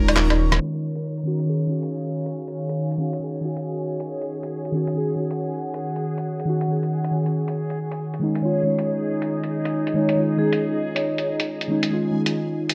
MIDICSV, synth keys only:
0, 0, Header, 1, 2, 480
1, 0, Start_track
1, 0, Tempo, 434783
1, 668, Time_signature, 4, 2, 24, 8
1, 14066, End_track
2, 0, Start_track
2, 0, Title_t, "Synth keys"
2, 0, Program_c, 0, 88
2, 0, Control_c, 0, 64, 127
2, 0, Note_on_c, 0, 56, 89
2, 0, Note_on_c, 0, 61, 81
2, 0, Note_on_c, 0, 63, 101
2, 0, Note_on_c, 0, 65, 91
2, 117, Note_off_c, 0, 56, 0
2, 128, Note_off_c, 0, 61, 0
2, 139, Note_off_c, 0, 63, 0
2, 684, Control_c, 0, 64, 0
2, 691, Note_off_c, 0, 65, 0
2, 884, Control_c, 0, 64, 127
2, 1360, Note_on_c, 0, 51, 82
2, 1382, Note_on_c, 0, 61, 75
2, 1405, Note_on_c, 0, 66, 91
2, 1592, Note_off_c, 0, 51, 0
2, 1603, Note_off_c, 0, 61, 0
2, 1606, Note_on_c, 0, 51, 76
2, 1614, Note_off_c, 0, 66, 0
2, 1626, Note_on_c, 0, 61, 67
2, 1649, Note_on_c, 0, 68, 79
2, 1830, Note_off_c, 0, 51, 0
2, 1843, Note_on_c, 0, 51, 80
2, 1849, Note_off_c, 0, 61, 0
2, 1860, Note_off_c, 0, 68, 0
2, 1869, Note_on_c, 0, 61, 72
2, 1890, Note_on_c, 0, 66, 87
2, 2035, Note_off_c, 0, 51, 0
2, 2048, Note_off_c, 0, 61, 0
2, 2058, Note_off_c, 0, 66, 0
2, 3287, Note_on_c, 0, 51, 85
2, 3306, Note_on_c, 0, 61, 76
2, 3327, Note_on_c, 0, 66, 92
2, 3515, Note_off_c, 0, 51, 0
2, 3525, Note_off_c, 0, 61, 0
2, 3527, Note_on_c, 0, 51, 75
2, 3536, Note_off_c, 0, 66, 0
2, 3550, Note_on_c, 0, 61, 68
2, 3571, Note_on_c, 0, 68, 83
2, 3749, Note_off_c, 0, 51, 0
2, 3763, Note_on_c, 0, 51, 79
2, 3771, Note_off_c, 0, 61, 0
2, 3781, Note_off_c, 0, 68, 0
2, 3785, Note_on_c, 0, 61, 71
2, 3809, Note_on_c, 0, 66, 91
2, 3955, Note_off_c, 0, 51, 0
2, 3966, Note_off_c, 0, 61, 0
2, 3978, Note_off_c, 0, 66, 0
2, 5210, Note_on_c, 0, 51, 85
2, 5234, Note_on_c, 0, 61, 77
2, 5255, Note_on_c, 0, 66, 97
2, 5437, Note_off_c, 0, 51, 0
2, 5449, Note_off_c, 0, 61, 0
2, 5449, Note_on_c, 0, 51, 76
2, 5459, Note_off_c, 0, 66, 0
2, 5471, Note_on_c, 0, 61, 70
2, 5494, Note_on_c, 0, 68, 85
2, 5680, Note_off_c, 0, 51, 0
2, 5691, Note_off_c, 0, 61, 0
2, 5692, Note_on_c, 0, 51, 80
2, 5703, Note_off_c, 0, 68, 0
2, 5715, Note_on_c, 0, 61, 74
2, 5736, Note_on_c, 0, 66, 88
2, 5879, Note_off_c, 0, 51, 0
2, 5891, Note_off_c, 0, 61, 0
2, 5902, Note_off_c, 0, 66, 0
2, 7123, Note_on_c, 0, 51, 83
2, 7145, Note_on_c, 0, 61, 78
2, 7168, Note_on_c, 0, 66, 94
2, 7354, Note_off_c, 0, 51, 0
2, 7365, Note_off_c, 0, 61, 0
2, 7375, Note_on_c, 0, 51, 75
2, 7376, Note_off_c, 0, 66, 0
2, 7395, Note_on_c, 0, 61, 69
2, 7419, Note_on_c, 0, 68, 80
2, 7603, Note_off_c, 0, 51, 0
2, 7613, Note_off_c, 0, 61, 0
2, 7625, Note_off_c, 0, 68, 0
2, 7850, Note_on_c, 0, 51, 64
2, 7872, Note_on_c, 0, 61, 59
2, 7894, Note_on_c, 0, 66, 72
2, 7978, Note_off_c, 0, 51, 0
2, 7991, Note_on_c, 0, 51, 64
2, 7994, Note_off_c, 0, 61, 0
2, 8005, Note_off_c, 0, 66, 0
2, 8015, Note_on_c, 0, 61, 61
2, 8034, Note_on_c, 0, 66, 74
2, 8324, Note_off_c, 0, 51, 0
2, 8336, Note_off_c, 0, 61, 0
2, 8346, Note_off_c, 0, 66, 0
2, 8363, Control_c, 0, 64, 0
2, 8575, Control_c, 0, 64, 127
2, 9047, Note_on_c, 0, 51, 85
2, 9061, Note_on_c, 0, 56, 77
2, 9076, Note_on_c, 0, 61, 77
2, 9088, Note_on_c, 0, 63, 93
2, 9275, Note_off_c, 0, 51, 0
2, 9283, Note_off_c, 0, 56, 0
2, 9288, Note_on_c, 0, 51, 76
2, 9290, Note_off_c, 0, 61, 0
2, 9296, Note_off_c, 0, 63, 0
2, 9304, Note_on_c, 0, 56, 69
2, 9316, Note_on_c, 0, 61, 69
2, 9329, Note_on_c, 0, 65, 83
2, 9514, Note_off_c, 0, 51, 0
2, 9527, Note_on_c, 0, 51, 79
2, 9528, Note_off_c, 0, 56, 0
2, 9534, Note_off_c, 0, 61, 0
2, 9540, Note_off_c, 0, 65, 0
2, 9544, Note_on_c, 0, 56, 75
2, 9557, Note_on_c, 0, 61, 74
2, 9574, Note_on_c, 0, 63, 86
2, 9717, Note_off_c, 0, 51, 0
2, 9726, Note_off_c, 0, 56, 0
2, 9732, Note_off_c, 0, 61, 0
2, 9741, Note_off_c, 0, 63, 0
2, 10970, Note_on_c, 0, 51, 84
2, 10984, Note_on_c, 0, 56, 80
2, 10997, Note_on_c, 0, 61, 79
2, 11013, Note_on_c, 0, 63, 96
2, 11193, Note_off_c, 0, 51, 0
2, 11204, Note_off_c, 0, 56, 0
2, 11206, Note_on_c, 0, 51, 77
2, 11210, Note_off_c, 0, 61, 0
2, 11219, Note_off_c, 0, 63, 0
2, 11222, Note_on_c, 0, 56, 68
2, 11232, Note_on_c, 0, 61, 69
2, 11250, Note_on_c, 0, 65, 86
2, 11434, Note_off_c, 0, 51, 0
2, 11447, Note_off_c, 0, 56, 0
2, 11447, Note_on_c, 0, 51, 83
2, 11452, Note_off_c, 0, 61, 0
2, 11460, Note_on_c, 0, 56, 74
2, 11461, Note_off_c, 0, 65, 0
2, 11474, Note_on_c, 0, 61, 75
2, 11490, Note_on_c, 0, 63, 90
2, 11637, Note_off_c, 0, 51, 0
2, 11643, Note_off_c, 0, 56, 0
2, 11651, Note_off_c, 0, 61, 0
2, 11659, Note_off_c, 0, 63, 0
2, 12891, Note_on_c, 0, 51, 88
2, 12905, Note_on_c, 0, 56, 79
2, 12921, Note_on_c, 0, 61, 81
2, 12935, Note_on_c, 0, 63, 95
2, 13118, Note_off_c, 0, 51, 0
2, 13125, Note_off_c, 0, 56, 0
2, 13129, Note_on_c, 0, 51, 80
2, 13133, Note_off_c, 0, 61, 0
2, 13140, Note_off_c, 0, 63, 0
2, 13144, Note_on_c, 0, 56, 74
2, 13158, Note_on_c, 0, 61, 72
2, 13174, Note_on_c, 0, 65, 88
2, 13356, Note_off_c, 0, 51, 0
2, 13368, Note_off_c, 0, 56, 0
2, 13369, Note_on_c, 0, 51, 82
2, 13375, Note_off_c, 0, 61, 0
2, 13381, Note_on_c, 0, 56, 74
2, 13383, Note_off_c, 0, 65, 0
2, 13397, Note_on_c, 0, 61, 76
2, 13410, Note_on_c, 0, 63, 91
2, 13558, Note_off_c, 0, 51, 0
2, 13564, Note_off_c, 0, 56, 0
2, 13572, Note_off_c, 0, 61, 0
2, 13578, Note_off_c, 0, 63, 0
2, 14066, End_track
0, 0, End_of_file